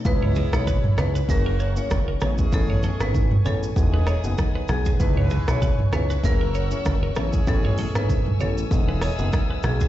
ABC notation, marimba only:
X:1
M:4/4
L:1/16
Q:"Swing 16ths" 1/4=97
K:C#m
V:1 name="Marimba"
B2 z c z2 B z ^A z2 c z4 | A2 z B z2 A z6 z G z | B2 z c z2 B z ^A z2 c z4 | A2 z B z2 A z6 z G z |]